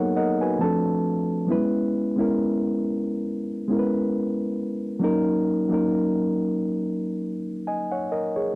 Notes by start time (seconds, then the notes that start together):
Already playing: F#3 A#3 B3 D#4 F#4 G#4 A4 A#4 C#5 F#5
0.16 A#4 D#5 F#5
0.41 F#4 B4 G#5
0.59 F3 A3 C4 D4 A5
0.64 A4
1.47 F#3 B3 C#4 E4
1.52 G#3 B4
2.16 G#3 B3 C#4 E4
2.21 A#4
3.68 G#3 B3 C#4 E4
3.73 A#4
3.79 B4
4.99 F#3 A#3 C#4 D#4
5.04 A#4
5.69 F#3 A#3 C#4 D#4
5.74 A#4
7.67 D#5 G#5
7.92 C#5 F#5
8.12 A#4 D#5
8.36 G#4 C#5